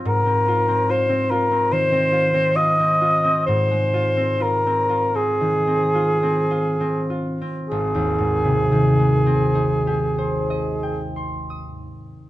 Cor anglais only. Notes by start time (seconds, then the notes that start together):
0.08 A#4
0.91 C5
1.30 A#4
1.73 C5
2.56 D#5
3.46 C5
4.42 A#4
5.16 G#4
7.69 G#4